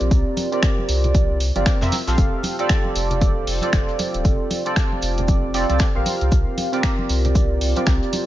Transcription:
Already playing: analog polysynth C4 F4 G4 A#4 D5
0.01 sub bass A#1, closed hi-hat
0.11 sub bass C2, kick, closed hi-hat, shaker
0.37 open hi-hat, high conga, shaker
0.52 analog polysynth C4 F4 G4 A#4 D5, closed hi-hat
0.63 finger snap, kick, snare, closed hi-hat, shaker
0.78 high conga
0.89 sub bass C2, open hi-hat, shaker
1.04 closed hi-hat, low conga
1.15 kick, closed hi-hat, high conga, shaker
1.30 sub bass C2
1.40 open hi-hat, shaker
1.55 sub bass G1, analog polysynth C4 F4 G4 A#4 D5, closed hi-hat, high conga
1.66 finger snap, kick, snare, closed hi-hat, shaker
1.81 sub bass F2, analog polysynth C4 F4 G4 A#4 E5, snare, low conga, shaker
1.92 snare, open hi-hat, high conga, shaker
2.07 sub bass A#1, analog polysynth C4 F4 G4 A4 F5, snare, closed hi-hat, shaker
2.18 sub bass F1, kick, closed hi-hat, shaker
2.43 open hi-hat, high conga, shaker
2.59 analog polysynth C4 F4 G4 A4 D5, closed hi-hat
2.69 finger snap, kick, snare, closed hi-hat, shaker
2.84 high conga
2.96 sub bass F1, open hi-hat, shaker
3.11 closed hi-hat, low conga
3.21 kick, closed hi-hat, high conga, shaker
3.47 sub bass F1, open hi-hat
3.61 analog polysynth C4 F4 G4 A4 D5, closed hi-hat, high conga
3.73 sub bass F1, finger snap, kick, snare, closed hi-hat, shaker
3.89 closed hi-hat
3.99 open hi-hat, high conga, shaker
4.14 sub bass D1, closed hi-hat
4.25 sub bass F1, kick, closed hi-hat, shaker
4.50 open hi-hat, high conga, shaker
4.65 analog polysynth C4 F4 G4 A4 D5, closed hi-hat
4.76 finger snap, kick, snare, closed hi-hat, shaker
4.92 high conga
5.02 sub bass F1, open hi-hat, shaker
5.18 closed hi-hat, low conga
5.28 kick, closed hi-hat, high conga, shaker
5.44 sub bass F1
5.54 analog polysynth C4 F4 G4 A4 D5, open hi-hat, shaker
5.69 sub bass C2, analog polysynth C4 F4 G4 A4 D5, closed hi-hat, high conga
5.79 finger snap, kick, snare, closed hi-hat, shaker
5.95 sub bass A1, analog polysynth C4 F4 G4 A#4 F5
6.06 open hi-hat, high conga, shaker
6.21 sub bass C2, closed hi-hat
6.32 sub bass C2, kick, closed hi-hat, shaker
6.58 open hi-hat, high conga, shaker
6.72 analog polysynth C4 F4 G4 A#4 D5, closed hi-hat
6.83 finger snap, kick, snare, closed hi-hat, shaker
6.99 high conga
7.09 sub bass C2, open hi-hat, shaker
7.25 closed hi-hat, low conga
7.35 kick, closed hi-hat, high conga, shaker
7.61 sub bass C2, open hi-hat
7.76 analog polysynth C4 F4 G4 A#4 D5, closed hi-hat, high conga
7.86 sub bass C2, finger snap, kick, snare, closed hi-hat, shaker
8.03 closed hi-hat
8.13 open hi-hat, high conga, shaker

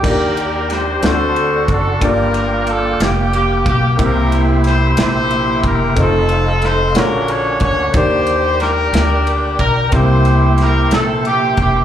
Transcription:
0.03 upright bass D#2, upright piano D#3 A#3 D4 F4 D5, horn section D4 G4 A#4, tonewheel organ G4 D5 G5 A#5, kick, crash
0.11 upright piano G4
0.37 ride
0.70 horn section C5, snare, ride
1.02 upright bass D2, upright piano D3 C4 D4 F#4 A4 D5, tonewheel organ A4 F#5 C6, snare, ride
1.06 horn section F#4 A4 C5
1.36 ride
1.68 upright bass F#1, horn section A4, kick, ride
2.00 upright bass G1, upright piano G2 A#3 D4 F4 G4, tonewheel organ F5 G5 D6, kick, ride
2.04 tonewheel organ A#3, horn section D4 F4 A#4, upright piano D5
2.34 ride
2.67 horn section A4, ride
3.00 upright bass F1, horn section G4, snare, ride
3.33 horn section G4, ride
3.66 upright bass B1, horn section G4, kick, ride
3.96 upright bass C2, upright piano C3 A#3 C4 E4 G4, tonewheel organ E5 G5 C6, kick, ride
4.01 horn section E4 G4 A#4, upright piano C5
4.32 ride
4.64 horn section C5, snare, ride
4.97 upright bass A#1, horn section C5, snare, ride
5.01 horn section E4 G4
5.31 ride
5.63 upright bass E1, horn section A#4, kick, ride
5.94 upright bass F1, upright piano A3 C4 D#4 F4 C5, tonewheel organ A4 D#5 F5, kick, ride
6.00 horn section C4 D#4 A4
6.29 ride
6.62 horn section C5, snare, ride
6.94 upright bass A#1, upright piano A#2 D3 A#3 F#4 G#4 C#5, horn section C#4 D4 A#4, tonewheel organ A#4 F#5 G#5, snare, ride
7.28 horn section C#5, ride
7.60 upright bass D2, horn section C#5, kick, ride
7.92 upright bass D#2, upright piano D#3 A#3 D4, horn section G4 C5, tonewheel organ A#4 D5 G5, kick, ride
7.96 upright piano G4 D5
8.27 ride
8.60 horn section D4 G4 A#4, snare, ride
8.93 upright bass D2, snare, ride
9.27 ride
9.59 upright bass B1, horn section A#4, kick, ride
9.91 upright bass C2, upright piano C3 A#3 C4 E4 G4, tonewheel organ A#3 E5 C6, horn section E4 G4 C5, kick, ride
9.96 upright piano C5
10.25 ride
10.58 horn section A#4, snare, ride
10.91 upright bass A#1, horn section A4, snare, ride
11.25 horn section G4, ride
11.57 upright bass E1, horn section G4, kick, ride

